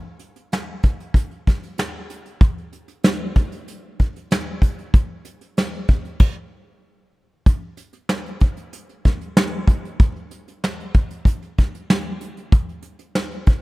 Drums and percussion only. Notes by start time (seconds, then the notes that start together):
0.19 closed hi-hat
0.36 closed hi-hat
0.52 snare, closed hi-hat
0.83 kick, closed hi-hat
1.00 closed hi-hat
1.14 kick, closed hi-hat
1.31 closed hi-hat
1.47 kick, snare, closed hi-hat
1.63 closed hi-hat
1.78 snare, closed hi-hat
2.10 closed hi-hat
2.26 closed hi-hat
2.41 kick, closed hi-hat
2.58 closed hi-hat
2.73 closed hi-hat
2.88 closed hi-hat
3.04 snare, closed hi-hat
3.35 kick, closed hi-hat
3.52 closed hi-hat
3.68 closed hi-hat
4.00 kick, closed hi-hat
4.16 closed hi-hat
4.31 snare, closed hi-hat
4.62 kick, closed hi-hat
4.79 closed hi-hat
4.94 kick, closed hi-hat
5.25 closed hi-hat
5.41 closed hi-hat
5.57 snare, closed hi-hat
5.74 closed hi-hat
5.88 kick, closed hi-hat
6.05 closed hi-hat
6.20 kick, crash
7.46 kick, closed hi-hat
7.77 closed hi-hat
7.93 closed hi-hat
8.09 snare
8.26 closed hi-hat
8.40 kick, closed hi-hat
8.57 closed hi-hat
8.73 closed hi-hat
8.89 closed hi-hat
9.05 kick, snare, closed hi-hat
9.21 closed hi-hat
9.37 snare
9.53 closed hi-hat
9.68 kick, closed hi-hat
9.85 closed hi-hat
10.00 kick, closed hi-hat
10.16 closed hi-hat
10.31 closed hi-hat
10.48 closed hi-hat
10.64 snare
10.80 closed hi-hat
10.94 kick, closed hi-hat
11.11 closed hi-hat
11.25 kick, closed hi-hat
11.42 closed hi-hat
11.58 kick, snare, closed hi-hat
11.75 closed hi-hat
11.90 snare
12.05 closed hi-hat
12.21 closed hi-hat
12.37 closed hi-hat
12.52 kick, closed hi-hat
12.69 closed hi-hat
12.82 closed hi-hat
12.99 closed hi-hat
13.15 snare
13.31 closed hi-hat
13.46 kick, closed hi-hat